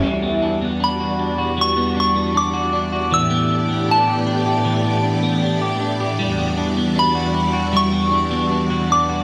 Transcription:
0.00 0.57 E3 medium
0.00 1.57 G3 medium
0.00 0.12 A3 medium
0.00 0.12 C#4 medium
0.00 0.57 E4 loud
0.00 0.57 G4 medium
0.06 3.10 E2 medium
0.06 3.11 E3 medium
0.06 3.10 G3 medium
0.06 3.10 F#4 medium
0.06 9.24 D5 medium
0.22 0.61 B3 soft
0.42 0.80 D4 soft
0.61 1.76 B3 soft
0.80 1.19 D4 soft
0.80 1.56 B5 medium
1.00 1.37 F#4 medium
1.19 1.96 D4 soft
1.38 2.52 F#4 medium
1.58 3.11 G3 medium
1.58 1.99 C#6 medium
1.77 2.15 B3 soft
1.97 2.34 D4 medium
1.97 2.38 C#6 medium
2.16 3.30 B3 soft
2.34 2.72 D4 medium
2.34 3.16 D6 medium
2.54 2.91 F#4 medium
2.73 3.50 D4 medium
2.92 3.20 F#4 medium
3.11 6.18 A2 medium
3.11 4.65 E3 medium
3.11 9.24 E3 medium
3.11 6.17 B3 medium
3.11 6.17 G4 medium
3.11 3.92 E6 medium
3.30 3.68 B3 medium
3.50 3.88 D4 soft
3.69 4.84 B3 soft
3.88 4.26 D4 soft
3.88 5.79 A5 medium
4.08 4.46 G4 medium
4.27 5.03 D4 medium
4.46 5.61 G4 medium
4.65 6.19 E3 medium
4.85 5.23 B3 soft
5.03 5.42 D4 medium
5.23 6.38 B3 soft
5.42 5.80 D4 medium
5.61 6.00 G4 medium
5.80 6.57 D4 medium
6.00 7.15 G4 medium
6.19 9.24 E2 medium
6.19 7.72 G3 medium
6.19 9.24 G3 medium
6.19 9.24 F#4 medium
6.38 6.76 B3 medium
6.58 6.96 D4 soft
6.77 7.92 B3 soft
6.96 7.33 D4 medium
6.96 7.77 B5 medium
7.15 7.52 F#4 medium
7.34 8.11 D4 soft
7.53 8.69 F#4 medium
7.73 9.24 G3 medium
7.73 8.94 C#6 medium
7.92 8.31 B3 soft
8.11 8.50 D4 medium
8.31 9.24 B3 medium
8.51 8.90 D4 medium
8.70 9.08 F#4 medium
8.90 9.24 D4 medium
8.90 9.24 D6 medium
9.09 9.24 F#4 medium

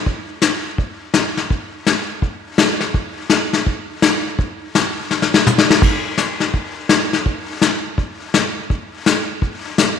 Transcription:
0.06 brush sweep soft
0.06 kick soft
0.42 snare medium
0.42 hi-hat pedal medium
0.78 brush sweep soft
0.78 kick soft
1.14 snare medium
1.14 hi-hat pedal medium
1.37 snare soft
1.50 brush sweep soft
1.50 kick soft
1.87 snare medium
1.87 hi-hat pedal medium
2.22 brush sweep soft
2.22 kick soft
2.58 snare medium
2.58 hi-hat pedal medium
2.81 snare soft
2.94 brush sweep soft
2.94 kick soft
3.30 snare medium
3.30 hi-hat pedal medium
3.53 snare soft
3.66 brush sweep soft
3.66 kick soft
4.02 snare medium
4.02 hi-hat pedal medium
4.39 brush sweep soft
4.39 kick soft
4.75 snare medium
4.75 hi-hat pedal soft
5.11 snare soft
5.22 snare soft
5.34 snare medium
5.47 hi-hat pedal medium
5.47 mid tom medium
5.58 snare medium
5.70 snare medium
5.82 brush sweep soft
5.82 kick medium
5.82 crash medium
6.18 snare medium
6.18 hi-hat pedal medium
6.40 snare soft
6.54 brush sweep soft
6.54 kick soft
6.89 snare medium
6.89 hi-hat pedal medium
7.13 snare soft
7.26 brush sweep soft
7.26 kick soft
7.62 snare medium
7.62 hi-hat pedal medium
7.98 brush sweep soft
7.98 kick soft
8.34 snare medium
8.34 hi-hat pedal medium
8.70 brush sweep soft
8.70 kick soft
9.06 snare medium
9.06 hi-hat pedal medium
9.42 brush sweep soft
9.42 kick soft
9.78 snare medium
9.78 hi-hat pedal medium

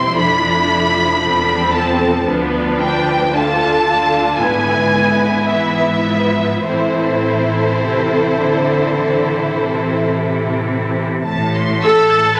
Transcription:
0.00 0.13 E1 medium
0.00 0.13 E2 medium
0.00 0.17 G3 soft
0.00 0.17 C4 medium
0.00 1.19 E4 medium
0.00 0.14 C5 soft
0.00 0.17 C6 medium
0.16 1.23 F1 medium
0.16 1.22 F2 medium
0.16 2.23 F3 medium
0.16 1.22 D4 medium
0.16 1.20 A4 medium
0.16 1.72 B5 medium
1.21 2.28 E1 medium
1.21 2.27 E2 medium
1.21 2.27 C4 medium
1.21 1.75 D4 medium
1.21 2.26 A4 medium
1.74 2.28 C4 medium
1.74 2.27 A5 medium
2.26 4.36 D2 medium
2.26 4.37 D2 medium
2.26 3.32 F3 medium
2.26 2.80 B3 medium
2.26 3.33 D4 medium
2.26 3.35 B4 medium
2.79 3.32 D4 medium
2.79 3.31 G5 medium
3.33 5.49 D3 medium
3.33 4.38 D4 medium
3.33 3.88 F4 medium
3.33 4.41 A4 medium
3.33 4.41 A5 medium
3.89 4.41 F4 medium
4.39 6.65 G#1 medium
4.39 6.65 G#2 medium
4.39 4.92 B3 medium
4.39 6.64 E4 medium
4.39 5.48 B4 medium
4.39 5.49 G#5 medium
4.93 6.61 B3 medium
5.49 6.06 E3 medium
5.49 6.63 B4 medium
5.49 6.63 E5 medium
6.06 6.64 F3 soft
6.64 11.04 A1 medium
6.64 7.69 A2 medium
6.64 11.04 E3 soft
6.64 11.04 C4 soft
6.64 11.03 E4 medium
6.64 11.07 A4 medium
6.64 10.09 C5 medium
7.82 8.37 C3 medium
8.40 9.56 D3 medium
9.56 11.24 C3 medium
11.27 12.20 A1 medium
11.27 12.19 A2 medium
11.27 11.53 A5 medium
11.55 11.83 C6 medium
11.83 12.34 A4 loud
11.83 12.34 A5 medium
11.83 12.10 E6 medium
12.10 12.37 A6 medium
12.36 12.40 B5 loud

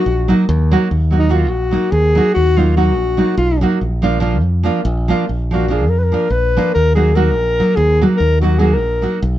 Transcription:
0.00 0.49 F#4 loud
0.06 0.32 A#1 medium
0.28 0.44 F#3 medium
0.28 0.44 A#3 medium
0.28 0.44 D#4 medium
0.28 0.45 F#4 medium
0.49 0.75 D#2 loud
0.71 0.87 F#3 medium
0.71 0.87 A#3 medium
0.71 0.87 D#4 medium
0.71 0.88 F#4 medium
0.91 1.49 D#2 medium
1.11 1.26 F#3 medium
1.11 1.27 A#3 soft
1.11 1.27 D#4 medium
1.11 1.27 F#4 medium
1.18 1.34 D#4 medium
1.29 1.45 F#3 medium
1.29 1.45 A#3 medium
1.29 1.45 D#4 medium
1.29 1.51 F4 medium
1.29 1.45 F#4 medium
1.49 1.75 A#1 medium
1.49 1.93 F#4 medium
1.71 1.88 F#3 medium
1.71 1.88 A#3 medium
1.71 1.88 D#4 medium
1.71 1.89 F#4 medium
1.92 2.19 D#2 medium
1.92 2.33 G#4 medium
2.15 2.31 F#3 medium
2.15 2.32 A#3 soft
2.15 2.32 D#4 medium
2.15 2.33 F#4 medium
2.34 2.95 D#2 medium
2.34 2.59 F#4 loud
2.56 2.72 F#3 medium
2.56 2.72 A#3 medium
2.56 2.73 D#4 medium
2.56 2.76 F4 medium
2.56 2.73 F#4 medium
2.76 2.91 F#3 medium
2.76 2.92 A#3 soft
2.76 2.91 D#4 medium
2.76 3.35 F#4 medium
2.76 2.92 F#4 medium
2.95 3.21 A#1 medium
3.17 3.33 F#3 medium
3.17 3.34 A#3 medium
3.17 3.34 D#4 medium
3.17 3.34 F#4 medium
3.37 3.64 B1 loud
3.37 3.61 F4 medium
3.61 3.77 F#3 medium
3.61 3.78 A#3 medium
3.61 3.78 D#4 medium
3.61 3.78 F#4 medium
3.81 4.40 A#1 medium
4.02 4.17 F3 medium
4.02 4.18 A#3 medium
4.02 4.18 D4 medium
4.02 4.18 F4 medium
4.20 4.36 F3 medium
4.20 4.36 A#3 medium
4.20 4.36 D4 medium
4.20 4.37 F4 medium
4.40 4.67 F2 medium
4.63 4.79 F3 medium
4.63 4.80 A#3 medium
4.63 4.80 D4 medium
4.63 4.80 F4 medium
4.85 5.11 A#1 loud
5.08 5.24 F3 medium
5.08 5.24 A#3 medium
5.08 5.24 D4 medium
5.08 5.25 F4 medium
5.29 5.87 A#1 medium
5.51 5.65 F3 medium
5.51 5.66 A#3 medium
5.51 5.66 D4 medium
5.51 5.66 F4 medium
5.51 5.74 F#4 medium
5.68 5.83 F3 medium
5.68 5.84 A#3 medium
5.68 5.84 D4 medium
5.68 5.84 F4 medium
5.73 5.91 G#4 medium
5.87 6.13 F2 medium
5.87 6.00 A#4 medium
5.99 6.05 B4 medium
6.04 6.33 A#4 medium
6.12 6.27 F3 medium
6.12 6.27 A#3 soft
6.12 6.28 D4 medium
6.12 6.28 F4 medium
6.30 6.57 A#1 medium
6.30 6.73 B4 medium
6.57 6.71 F3 medium
6.57 6.71 A#3 medium
6.57 6.71 D4 medium
6.57 6.72 F4 medium
6.74 7.34 D#2 medium
6.74 6.94 A#4 medium
6.95 7.10 F#3 soft
6.95 7.11 A#3 medium
6.95 7.11 D#4 medium
6.95 7.11 F#4 medium
6.95 7.16 G#4 medium
7.15 7.29 F#3 medium
7.15 7.30 A#3 medium
7.15 7.30 D#4 medium
7.15 7.30 F#4 medium
7.15 7.77 A#4 medium
7.34 7.60 A#1 medium
7.60 7.74 F#3 medium
7.60 7.74 A#3 medium
7.60 7.74 D#4 soft
7.60 7.75 F#4 medium
7.75 8.03 D#2 medium
7.75 8.01 G#4 medium
8.01 8.17 F#3 medium
8.01 8.16 A#3 medium
8.01 8.17 D#4 soft
8.01 8.17 F#4 medium
8.16 8.78 D#2 medium
8.16 8.39 A#4 medium
8.41 8.57 F#3 medium
8.41 8.57 A#3 medium
8.41 8.57 D#4 medium
8.41 8.61 F#4 medium
8.41 8.58 F#4 medium
8.59 8.75 F#3 medium
8.59 8.75 A#3 medium
8.59 8.75 D#4 medium
8.59 8.75 F#4 medium
8.59 8.75 G#4 medium
8.74 9.21 A#4 medium
8.78 9.05 A#1 medium
9.02 9.18 F#3 medium
9.02 9.18 A#3 medium
9.02 9.19 D#4 medium
9.02 9.19 F#4 medium
9.22 9.39 B1 medium

